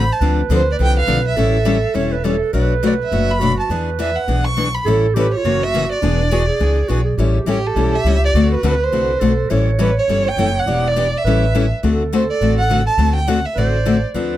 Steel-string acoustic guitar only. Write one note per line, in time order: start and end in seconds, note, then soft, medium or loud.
0.21 0.40 D3 medium
0.21 0.40 F3 medium
0.21 0.40 C4 medium
0.21 0.40 D4 medium
0.21 0.40 A4 medium
0.50 0.60 D3 medium
0.50 0.61 F3 medium
0.50 0.61 C4 medium
0.50 0.61 D4 medium
0.50 0.61 A4 medium
0.79 0.98 D3 medium
0.79 0.98 F3 medium
0.79 0.99 C4 medium
0.79 0.99 D4 medium
0.79 0.99 A4 medium
1.07 1.18 D3 medium
1.07 1.18 F3 medium
1.07 1.18 C4 medium
1.07 1.19 D4 medium
1.07 1.19 A4 medium
1.36 1.56 E3 medium
1.36 1.56 G3 medium
1.36 1.56 C#4 medium
1.36 1.57 E4 medium
1.36 1.57 A4 medium
1.65 1.76 E3 medium
1.65 1.76 G3 medium
1.65 1.76 C#4 medium
1.65 1.77 E4 medium
1.65 1.76 A4 loud
1.94 2.13 E3 medium
1.94 2.14 G3 medium
1.94 2.14 C#4 medium
1.94 2.14 E4 medium
1.94 2.14 A4 medium
2.24 2.35 E3 medium
2.24 2.35 G3 medium
2.24 2.35 C#4 medium
2.24 2.35 E4 medium
2.24 2.35 A4 medium
2.53 2.72 B2 medium
2.53 2.72 F#3 medium
2.53 2.73 A3 medium
2.53 2.73 D4 medium
2.53 2.73 F#4 medium
2.83 2.93 B2 medium
2.83 2.93 F#3 medium
2.83 2.93 A3 medium
2.83 2.93 D4 medium
2.83 2.93 F#4 medium
3.12 3.31 B2 medium
3.12 3.31 F#3 medium
3.12 3.31 A3 medium
3.12 3.31 D4 medium
3.12 3.31 F#4 medium
3.41 3.51 B2 medium
3.41 3.51 F#3 medium
3.41 3.51 A3 medium
3.41 3.52 D4 medium
3.41 3.52 F#4 medium
3.70 3.89 E3 medium
3.70 3.89 B3 medium
3.70 3.89 D4 medium
3.70 3.89 G#4 medium
3.99 4.09 E3 medium
3.99 4.09 B3 medium
3.99 4.10 D4 medium
3.99 4.09 G#4 medium
4.28 4.47 E3 medium
4.28 4.47 B3 medium
4.28 4.47 D4 medium
4.28 4.47 G#4 medium
4.57 4.67 E3 medium
4.57 4.67 B3 medium
4.57 4.67 D4 medium
4.57 4.68 G#4 medium
4.86 5.05 E3 medium
4.86 5.05 G3 medium
4.86 5.05 C#4 medium
4.86 5.06 E4 medium
4.86 5.06 A4 medium
5.16 5.26 E3 medium
5.16 5.26 G3 medium
5.16 5.26 C#4 medium
5.16 5.26 E4 medium
5.16 5.26 A4 medium
5.45 5.63 C#3 medium
5.45 5.63 E3 medium
5.45 5.63 A#3 medium
5.45 5.63 C#4 medium
5.45 5.64 F#4 medium
5.74 5.84 C#3 medium
5.74 5.84 E3 medium
5.74 5.84 A#3 medium
5.74 5.84 C#4 medium
5.74 5.84 F#4 medium
6.02 6.21 E3 medium
6.02 6.21 B3 medium
6.02 6.21 D4 medium
6.02 6.21 G#4 medium
6.31 6.41 E3 medium
6.31 6.41 B3 medium
6.31 6.41 D4 medium
6.31 6.42 G#4 medium
6.60 6.79 E3 medium
6.60 6.79 B3 medium
6.60 6.79 D4 medium
6.60 6.79 G#4 medium
6.88 6.99 E3 medium
6.88 6.99 B3 medium
6.88 6.99 D4 medium
6.88 7.00 G#4 medium
7.18 7.37 E3 medium
7.18 7.37 G3 medium
7.18 7.37 C#4 medium
7.18 7.37 E4 medium
7.18 7.38 A4 medium
7.46 7.57 E3 medium
7.46 7.57 G3 medium
7.46 7.58 C#4 medium
7.46 7.58 E4 medium
7.46 7.58 A4 medium
7.76 7.95 E3 medium
7.76 7.95 G3 medium
7.76 7.95 C#4 medium
7.76 7.95 E4 medium
7.76 7.96 A4 medium
8.06 8.16 E3 medium
8.06 8.16 G3 medium
8.06 8.16 C#4 medium
8.06 8.16 E4 medium
8.06 8.16 A4 medium
8.35 8.53 D3 medium
8.35 8.54 A3 medium
8.35 8.54 C4 medium
8.35 8.54 F#4 medium
8.35 8.54 A4 medium
8.63 8.73 D3 medium
8.63 8.74 A3 medium
8.63 8.74 C4 medium
8.63 8.74 F#4 medium
8.63 8.74 A4 medium
8.92 9.11 D3 medium
8.92 9.11 A3 medium
8.92 9.12 C4 medium
8.92 9.11 F#4 medium
8.92 9.12 A4 medium
9.21 9.31 D3 medium
9.21 9.32 A3 medium
9.21 9.32 C4 medium
9.21 9.32 F#4 medium
9.21 9.32 A4 medium
9.50 9.69 E3 medium
9.50 9.69 G3 medium
9.50 9.69 C#4 medium
9.50 9.70 E4 medium
9.50 9.70 A4 medium
9.79 9.89 E3 medium
9.79 9.89 G3 medium
9.79 9.89 C#4 loud
9.79 9.90 E4 medium
9.79 9.90 A4 medium
10.09 10.27 E3 medium
10.09 10.28 G3 medium
10.09 10.28 C#4 medium
10.09 10.28 E4 medium
10.09 10.28 A4 medium
10.38 10.48 E3 medium
10.38 10.48 G3 medium
10.38 10.48 C#4 medium
10.38 10.48 E4 medium
10.38 10.49 A4 medium
10.67 10.86 E3 medium
10.67 10.86 B3 medium
10.67 10.86 D4 medium
10.67 10.86 G4 medium
10.96 11.06 E3 medium
10.96 11.06 B3 medium
10.96 11.07 D4 medium
10.96 11.07 G4 medium
11.26 11.44 E3 medium
11.26 11.44 G3 medium
11.26 11.45 C#4 medium
11.26 11.45 E4 medium
11.26 11.45 A4 medium
11.55 11.64 E3 medium
11.55 11.64 G3 medium
11.55 11.65 C#4 medium
11.55 11.65 E4 medium
11.55 11.65 A4 medium
11.83 12.02 D3 medium
11.83 12.02 A3 medium
11.83 12.02 C4 medium
11.83 12.02 F#4 medium
11.83 12.02 A4 medium
12.13 12.22 D3 medium
12.13 12.23 A3 medium
12.13 12.23 C4 medium
12.13 12.23 F#4 medium
12.13 12.23 A4 medium
12.41 12.60 D3 medium
12.41 12.60 A3 medium
12.41 12.60 C4 medium
12.41 12.61 F#4 medium
12.41 12.60 A4 medium
12.70 12.80 D3 medium
12.70 12.81 A3 medium
12.70 12.80 C4 medium
12.70 12.81 F#4 medium
12.70 12.81 A4 medium
12.98 13.17 D3 medium
12.98 13.18 A3 medium
12.98 13.18 C4 medium
12.98 13.18 F#4 medium
12.98 13.18 A4 medium
13.27 13.38 D3 medium
13.27 13.38 A3 medium
13.27 13.38 C4 medium
13.27 13.38 F#4 medium
13.27 13.39 A4 medium
13.57 13.76 D3 medium
13.57 13.76 A3 medium
13.57 13.76 C4 medium
13.57 13.77 F#4 medium
13.57 13.77 A4 medium
13.85 13.96 D3 medium
13.85 13.96 A3 medium
13.85 13.96 C4 medium
13.85 13.97 F#4 medium
13.85 13.97 A4 medium
14.14 14.34 D3 medium
14.14 14.34 F3 medium
14.14 14.34 C4 medium
14.14 14.34 D4 medium
14.14 14.34 A4 medium